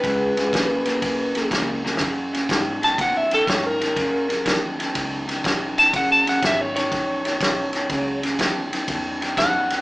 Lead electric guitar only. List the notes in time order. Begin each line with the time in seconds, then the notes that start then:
Already playing: B4
2.84 A5
3.01 F#5
3.17 E5
3.34 A4
3.50 C#5
3.66 A#4
5.79 A5
5.96 F#5
6.12 A5
6.29 F#5
6.46 E5
6.61 C#5
6.76 C#5
9.38 F#5